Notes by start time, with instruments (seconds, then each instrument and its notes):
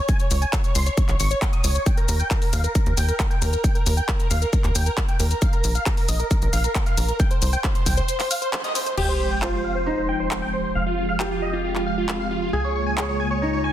0.08 supersaw synth G#5, kick, closed hi-hat, shaker
0.19 supersaw synth C#5, closed hi-hat, shaker
0.31 analog synth bass C#2, supersaw synth C#5, open hi-hat, shaker
0.42 supersaw synth G#5, closed hi-hat, shaker
0.53 supersaw synth C#5, kick, clap, closed hi-hat, shaker
0.64 supersaw synth C#5, closed hi-hat, shaker
0.75 analog synth bass C#2, supersaw synth C6, open hi-hat, shaker
0.86 supersaw synth C#5, closed hi-hat, shaker
0.97 supersaw synth C#5, kick, closed hi-hat, shaker
1.08 analog synth bass A#1, supersaw synth C#5, clap, closed hi-hat, shaker
1.20 analog synth bass G#1, supersaw synth C#6, open hi-hat, shaker
1.31 supersaw synth C#5, closed hi-hat, shaker
1.42 supersaw synth C#5, kick, clap, closed hi-hat, shaker
1.53 supersaw synth D#6, closed hi-hat, shaker
1.64 analog synth bass C#2, supersaw synth C#5, open hi-hat, shaker
1.75 supersaw synth C#5, closed hi-hat, shaker
1.86 supersaw synth G5, kick, closed hi-hat, shaker
1.97 supersaw synth A#4, closed hi-hat, shaker
2.08 analog synth bass D#2, supersaw synth A#4, open hi-hat, shaker
2.19 supersaw synth G5, closed hi-hat, shaker
2.31 supersaw synth A#4, kick, clap, closed hi-hat, shaker
2.42 supersaw synth A#4, open hi-hat, shaker
2.53 analog synth bass D#2, supersaw synth F5, open hi-hat, shaker
2.64 supersaw synth A#4, closed hi-hat, shaker
2.75 kick, closed hi-hat, shaker
2.86 analog synth bass D#2, supersaw synth A#4, closed hi-hat, shaker
2.97 analog synth bass D#2, supersaw synth G5, open hi-hat, shaker
3.08 supersaw synth A#4, closed hi-hat, shaker
3.20 kick, clap, closed hi-hat, shaker
3.30 supersaw synth G5, closed hi-hat, shaker
3.42 analog synth bass D#2, supersaw synth A#4, open hi-hat, shaker
3.53 supersaw synth A#4, closed hi-hat, shaker
3.63 supersaw synth G5, kick, closed hi-hat, shaker
3.75 supersaw synth A#4, closed hi-hat, shaker
3.86 analog synth bass D#2, supersaw synth A#4, open hi-hat, shaker
3.97 supersaw synth G5, closed hi-hat, shaker
4.08 supersaw synth A#4, kick, clap, closed hi-hat, shaker
4.19 supersaw synth A#4, closed hi-hat, shaker
4.30 analog synth bass D#2, supersaw synth F5, open hi-hat, shaker
4.42 supersaw synth A#4, closed hi-hat, shaker
4.53 supersaw synth A#4, kick, closed hi-hat, shaker
4.64 analog synth bass D#2, supersaw synth A#4, clap, closed hi-hat, shaker
4.75 analog synth bass D#2, supersaw synth G5, open hi-hat, shaker
4.86 supersaw synth A#4, closed hi-hat, shaker
4.97 supersaw synth A#4, kick, clap, closed hi-hat, shaker
5.08 supersaw synth G5, closed hi-hat, shaker
5.20 analog synth bass D#2, supersaw synth A#4, open hi-hat, shaker
5.31 supersaw synth A#4, closed hi-hat, shaker
5.42 supersaw synth F5, kick, closed hi-hat, shaker
5.53 supersaw synth A#4, closed hi-hat, shaker
5.64 analog synth bass A#1, supersaw synth A#4, open hi-hat, shaker
5.75 supersaw synth F5, closed hi-hat, shaker
5.86 supersaw synth A#4, kick, clap, closed hi-hat, shaker
5.97 supersaw synth A#4, open hi-hat, shaker
6.08 analog synth bass A#1, supersaw synth D#5, open hi-hat, shaker
6.19 supersaw synth A#4, closed hi-hat, shaker
6.31 supersaw synth A#4, kick, closed hi-hat, shaker
6.42 analog synth bass A#1, supersaw synth A#4, closed hi-hat, shaker
6.53 analog synth bass A#1, supersaw synth F5, open hi-hat, shaker
6.64 supersaw synth A#4, closed hi-hat, shaker
6.75 kick, clap, closed hi-hat, shaker
6.86 supersaw synth F5, closed hi-hat, shaker
6.97 analog synth bass A#1, supersaw synth A#4, open hi-hat, shaker
7.08 supersaw synth A#4, closed hi-hat, shaker
7.20 supersaw synth G5, kick, closed hi-hat, shaker
7.31 supersaw synth C5, closed hi-hat, shaker
7.42 analog synth bass C2, supersaw synth C5, open hi-hat, shaker
7.53 supersaw synth G5, closed hi-hat, shaker
7.64 supersaw synth C5, kick, clap, closed hi-hat, shaker
7.75 supersaw synth C5, closed hi-hat, shaker
7.86 analog synth bass C2, supersaw synth G5, kick, open hi-hat, shaker
7.97 supersaw synth C5, closed hi-hat, shaker
8.08 supersaw synth C5, closed hi-hat, shaker
8.19 supersaw synth C5, clap, open hi-hat, shaker
8.31 supersaw synth F5, open hi-hat, shaker
8.42 supersaw synth C5, closed hi-hat, shaker
8.53 supersaw synth C5, clap, closed hi-hat, shaker
8.64 supersaw synth D#5, closed hi-hat, shaker
8.75 supersaw synth C5, open hi-hat, shaker
8.86 supersaw synth C5, closed hi-hat, shaker
8.97 analog synth bass F1, analog synth pad F3 G#3 C4, felt piano G4, supersaw synth G5, crash, sub drop
9.09 supersaw synth C5
9.20 analog synth pad F3 G#3 C4 G4, supersaw synth C5
9.31 supersaw synth G5
9.42 felt piano F4, supersaw synth C5, clap
9.53 analog synth pad F3 G#3 C4 G4, supersaw synth C5
9.64 analog synth pad F3 G#3 C4 G4, supersaw synth F5
9.75 supersaw synth C5
9.86 felt piano D#4, supersaw synth C5
9.97 analog synth pad F3 G#3 C4 G4, supersaw synth C5
10.09 analog synth pad F3 G#3 C4 G4, supersaw synth G5
10.20 supersaw synth C5
10.31 analog synth pad F3 G#3 C4 G4, supersaw synth C5, clap
10.42 analog synth pad F3 G#3 C4 G4, supersaw synth G5
10.53 supersaw synth C5
10.64 supersaw synth C5
10.75 analog synth bass F1, analog synth pad F3 G#3 C4 G#4, supersaw synth F5
10.86 supersaw synth F4
10.97 analog synth pad F3 G#3 C4 G#4, supersaw synth F4
11.09 supersaw synth F5
11.20 supersaw synth F4, felt piano G4, clap
11.31 analog synth pad F3 G#3 C4 G#4, supersaw synth F4
11.42 analog synth pad F3 G#3 C4 G#4, supersaw synth D#5
11.53 supersaw synth F4
11.64 supersaw synth F4
11.75 analog synth pad F3 G#3 C4 G#4, supersaw synth F4, clap
11.86 analog synth pad F3 G#3 C4 G#4, supersaw synth F5
11.98 supersaw synth F4
12.09 analog synth pad F3 G#3 C4 G#4, supersaw synth F4, clap
12.20 analog synth pad F3 G#3 C4 G#4, supersaw synth F5
12.31 supersaw synth F4
12.42 supersaw synth F4
12.53 analog synth bass C#2, analog synth pad C#3 G#3 A#3 F4, felt piano G#4, supersaw synth G#5
12.64 supersaw synth C#5
12.75 analog synth pad C#3 G#3 A#3 F4, supersaw synth C#5
12.86 supersaw synth G#5
12.97 felt piano G#4, supersaw synth C#5, clap
13.09 analog synth pad C#3 G#3 A#3 F4, supersaw synth C#5
13.20 analog synth pad C#3 G#3 A#3 F4, supersaw synth G#5
13.31 supersaw synth C#5
13.42 felt piano D#4, supersaw synth C#5
13.53 analog synth pad C#3 G#3 A#3 F4, supersaw synth C#5
13.64 analog synth pad C#3 G#3 A#3 F4, supersaw synth G#5